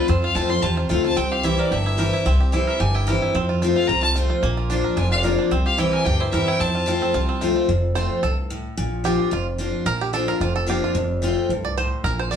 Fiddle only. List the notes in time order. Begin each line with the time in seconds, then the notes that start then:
0.08 C5
0.23 F5
0.35 A5
0.50 C6
0.63 A5
0.77 C5
0.90 F5
1.05 A5
1.17 G5
1.32 F5
1.44 E5
1.59 D5
1.73 E5
2.68 E5
2.80 G#5
2.94 G5
3.76 F5
3.88 A#5
4.03 A5
4.84 D5
4.97 G#5
5.12 F5
5.66 F5
5.79 G5
5.93 G#5
6.05 G5
6.20 C5
6.32 E5
6.48 G5
6.61 A5